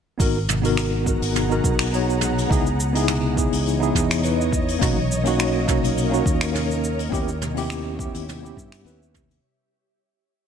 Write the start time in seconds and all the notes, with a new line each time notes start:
0.18 G#1 B3 D#4 F#4 G#4 F#5 A#5, kick, open hi-hat, cabasa
0.22 A#4
0.49 mid tom, cabasa
0.62 B3 D#4 F#4 A#4, open hi-hat, cabasa
0.77 finger snap, open hi-hat, cabasa
1.04 B3 D#4 F#4, kick, cabasa
1.09 A#4
1.22 G#1, open hi-hat, cabasa
1.35 mid tom, open hi-hat, cabasa
1.48 B3 D#4 F#4 A#4, cabasa
1.64 B1, kick, cabasa
1.79 finger snap, open hi-hat, cabasa
1.91 B3 D#4 F#4 C#5, open hi-hat, cabasa
2.10 cabasa
2.21 mid tom, cabasa
2.38 open hi-hat, cabasa
2.48 C#2 E3 B3 D#4 E4 G#4 C#5 D#5, kick, open hi-hat, cabasa
2.67 cabasa
2.80 cabasa
2.93 B3 D#4 E4 G#4, open hi-hat, cabasa
3.08 finger snap, mid tom, open hi-hat, cabasa
3.35 B3 D#4 E4 G#4, kick, cabasa
3.52 C#2, open hi-hat, cabasa
3.66 open hi-hat, cabasa
3.79 B3 D#4 E4 G#4, cabasa
3.95 E2, kick, mid tom, cabasa
4.10 finger snap, open hi-hat, cabasa
4.21 B3 D#4 E4 B4, open hi-hat, cabasa
4.41 cabasa
4.53 kick, cabasa
4.68 open hi-hat, cabasa
4.79 B1 A#3 C#4 D#4 F#4 A#4, kick, mid tom, open hi-hat, cabasa
5.12 cabasa
5.24 A#3 C#4 D#4 F#4, open hi-hat, cabasa
5.39 finger snap, open hi-hat, cabasa
5.65 A#3 C#4 D#4 F#4, kick, mid tom, cabasa
5.84 B1, open hi-hat, cabasa
5.97 open hi-hat, cabasa
6.09 A#3 C#4 D#4
6.14 F#4, cabasa
6.26 D#2, kick, cabasa
6.41 finger snap, open hi-hat, cabasa
6.52 A#3 C#4 D#4 A#4, mid tom, open hi-hat, cabasa
6.71 cabasa
6.84 cabasa
6.99 open hi-hat, cabasa
7.10 D#2 B3 C#4 E4 G4 E5, kick, open hi-hat
7.14 cabasa
7.28 cabasa
7.42 mid tom, cabasa
7.54 B3 C#4 E4 G4, open hi-hat, cabasa
7.70 finger snap, open hi-hat, cabasa
7.96 B3 C#4 E4 G4, kick, cabasa
8.14 D#2, open hi-hat, cabasa
8.28 mid tom, open hi-hat, cabasa
8.41 B3 C#4 E4
8.45 G4, cabasa
8.57 G2, kick, cabasa
8.72 finger snap, open hi-hat, cabasa
8.83 D#2 B3 C#4 E4 B4, open hi-hat
8.87 cabasa
9.03 cabasa
9.14 kick, mid tom, cabasa
9.31 open hi-hat, cabasa